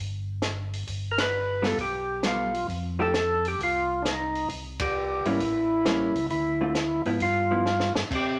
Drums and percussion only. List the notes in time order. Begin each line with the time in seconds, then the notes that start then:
0.42 snare, closed hi-hat
0.73 open hi-hat
0.87 kick, open hi-hat
1.18 snare, ride
1.64 snare, open hi-hat
1.78 kick, open hi-hat
2.23 snare, closed hi-hat
2.54 open hi-hat
2.69 kick, open hi-hat
3.14 snare, closed hi-hat
3.45 open hi-hat
3.59 kick, open hi-hat
4.05 snare, closed hi-hat
4.35 open hi-hat
4.49 kick, open hi-hat
4.79 kick, ride
5.25 open hi-hat
5.40 kick, open hi-hat
5.85 snare, closed hi-hat
6.16 open hi-hat
6.30 kick, open hi-hat
6.75 snare, closed hi-hat
7.05 open hi-hat
7.20 kick, open hi-hat
7.66 snare
7.80 snare
7.95 snare
8.11 kick, crash